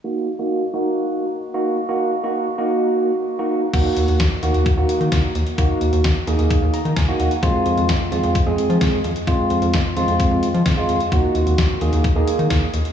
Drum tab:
CC |----------------|----------------|x---------------|----------------|
HH |----------------|----------------|x-xxx-xxx-xxx-xx|x-xxx-xxx-xxx-xx|
SD |----------------|----------------|----o-------o---|----o-------o---|
BD |----------------|----------------|o---o---o---o---|o---o---o---o---|

CC |----------------|----------------|----------------|
HH |x-xxx-xxx-xxx-xx|x-xxx-xxx-xxx-xx|x-xxx-xxx-xxx-xx|
SD |----o-------o---|----o-------o---|----o-------o---|
BD |o---o---o---o---|o---o---o---o---|o---o---o---o---|